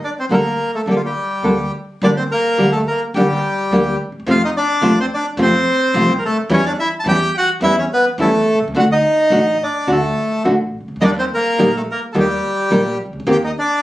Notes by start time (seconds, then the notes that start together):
0.04 D4 D5
0.19 C4 C5
0.29 D2 D3 G3 A#3 D4 A4
0.34 A#4
0.74 A3 A4
0.86 G1 D3 G3 A#3 D4 A4
0.91 G4
0.96 F4
1.05 G3 G4
1.43 D2 D3 G3 A#3 D4 A4
2.02 G1 D3 G3 A#3 D4 G4 D5
2.17 C4 C5
2.31 A#3 A#4
2.58 D2 D3 G3 A#3 D4 G4
2.72 A3 A4
2.87 A#3 A#4
3.14 G1 D3 G3 A#3 D4 G4
3.18 G3
3.71 D2 D3 G3 A#3 D4 G4
4.05 D2
4.12 D#2
4.20 E2
4.27 F2 C3 F3 A3 C4 F4 F5
4.45 D#4 D#5
4.57 D4 D5
4.81 C2 C3 F3 A3 C4 F4
5.00 C4 C5
5.14 D4 D5
5.37 F2 C3 F3 A3 C4 F4
5.42 C4 C5
5.94 C2 C3 F3 A3 C4 F4
6.18 A#4
6.25 A3 A4
6.50 E2 E3 G3 C#4 E4 C#5
6.66 D4 D5
6.79 E4 E5
7.00 A5
7.05 E2 E3 G3 C#4 E4 G5
7.09 G4
7.38 F#4 F#5
7.61 E2 E3 G3 C#4 E4 E5
7.79 C#4 C#5
7.93 B3 B4
8.18 E2 E3 G3 A3 C#4 E4 A4
8.53 B1
8.60 C2
8.68 C#2
8.75 D2 D3 A3 D4 F#4
8.79 F#4 F#5
8.92 D#4 D#5
9.30 A1 D3 A3 D4 F#4
9.63 D4 D5
9.87 D2 D3 A3 D4 F#4
9.92 A4
10.44 A1 D3 A3 D4 F#4
10.81 C2
10.88 C#2
10.96 D2
11.01 D#2 D#3 G3 A#3 D#4 G4 D5 D#5
11.05 D4
11.19 C4 C5
11.34 A#3 A#4
11.58 A#1 D#3 G3 A#3 D#4 G4
11.77 A3 A4
11.91 A#3 A#4
12.12 D#2 D#3 G3 A#3 D#4 G4 A4
12.20 G3 G4
12.70 A#1 D#3 G3 A#3 D#4 G4
13.05 C2
13.13 C#2
13.20 D2
13.27 D#2 D#3 A#3 C4 G4
13.31 G4 G5
13.44 D#4 D#5
13.59 D4 D5